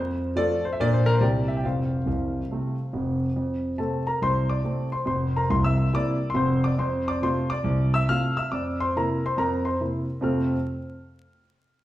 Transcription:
grand piano
Already playing: F2
0.36 F3 A3 F4 A4 D5
0.65 C5
0.73 E5
0.80 A#2 F3 A#3 D4 D5
0.94 C5
1.06 A#4
1.13 C5
1.20 C2 C3 G3 C4 G4 D5
1.48 E5
1.57 G5
1.64 F1 F2 C5 F5
2.06 C1 C2
2.51 C3 A3 C4
2.93 F1 F2
3.36 F2
3.78 C3 A3 C4 A4 A5
4.07 A#4 A#5
4.22 C2 C5 C6
4.49 D5 D6
4.63 C3 A3 C4
4.92 C5 C6
5.05 F1 F2 C5 C6
5.36 A#4 A#5
5.50 C1 C2 C6
5.64 E5 E6
5.93 C3 A#3 E4 D5 D6
6.30 C6
6.34 F1 F2 C5 C6
6.64 D5 D6
6.78 F2 C5 C6
7.08 D5 D6
7.22 C3 A3 F4 C5 C6
7.50 D5 D6
7.64 C2
7.94 E5 E6
8.08 C3 A3 F4 F5 F6
8.37 E5 E6
8.51 F2 D5 D6
8.80 C5 C6
8.96 C3 A#3 E4 A#4 A#5
9.26 C5 C6
9.37 F2 A#4 A#5
9.65 C5 C6
9.80 C3 A#3 E4
10.21 F2 C3 A3 C4 F4 A4 F6

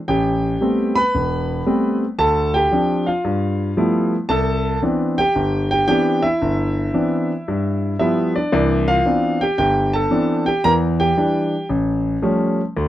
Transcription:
grand piano
0.08 A1 G4 G5
0.61 G3 A3 B3 C4
0.95 B4 B5
1.15 E1
1.67 G3 A3 B3 C4
2.19 D2 A4 A5
2.54 G4 G5
2.71 F3 C4 D4
3.06 F4 F5
3.25 G2
3.77 F3 G3 A3 B3 E4
4.29 C2 A4 A5
4.82 E3 B3 C4 D4
5.18 G4 G5
5.35 G1
5.71 G4 G5
5.88 E3 B3 C4 D4 G4 G5
6.22 E4 E5
6.42 G1
6.94 E3 B3 C4 D4
7.48 G2
7.99 F3 G3 B3 E4 E5
8.36 D4 D5
8.52 C2 E3 D4 D5
8.88 F4 F5
9.05 E3 B3 C4 D4
9.41 G4 G5
9.58 G1 G4 G5
9.93 A4 A5
10.11 E3 B3 C4 D4
10.46 G4 G5
10.64 E2 E3 A#4 A#5
11.00 G4 G5
11.17 E3 G3 D4
11.69 A1
12.22 F3 G3 A3 C#4
12.77 D2

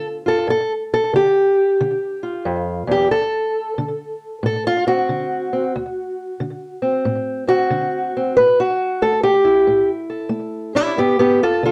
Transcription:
steel-string acoustic guitar
Already playing: D3 B3 F4
0.26 F4 A4
0.47 G2 A4
0.94 A4
1.13 D3 G4
1.81 D3
2.23 F4
2.45 F2
2.87 E2
2.91 G4
3.11 D2 A4
3.78 D3
4.43 A2 A4
4.67 F4
4.87 C4 F#4
5.09 D3
5.53 C4
5.76 D2
6.40 D3
6.82 C4
7.05 A2
7.47 C4 F#4
7.70 D3
8.17 C4
8.37 A2 B4
8.60 F#4
9.02 A3 A4
9.23 G4
9.45 E4
9.67 A2
10.10 A4
10.29 A3
10.75 C#4 E4 G4
10.97 G2 B3 G4
11.19 B3 G4
11.43 F4 A4
11.63 D3 F4 A4

